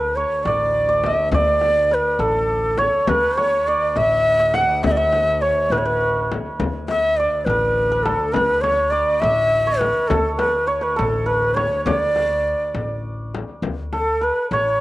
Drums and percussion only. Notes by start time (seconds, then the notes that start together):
0.46 frame drum
1.04 frame drum
1.32 frame drum
1.61 frame drum
2.20 frame drum
2.78 frame drum
3.07 frame drum
3.38 frame drum
3.96 frame drum
4.54 frame drum
4.84 frame drum
5.13 frame drum
5.72 frame drum
6.32 frame drum
6.60 frame drum
6.88 frame drum
7.47 frame drum
8.06 frame drum
8.34 frame drum
8.64 frame drum
9.22 frame drum
9.81 frame drum
10.10 frame drum
10.39 frame drum
10.99 frame drum
11.57 frame drum
11.87 frame drum
12.16 frame drum
12.75 frame drum
13.35 frame drum
13.63 frame drum
13.93 frame drum
14.52 frame drum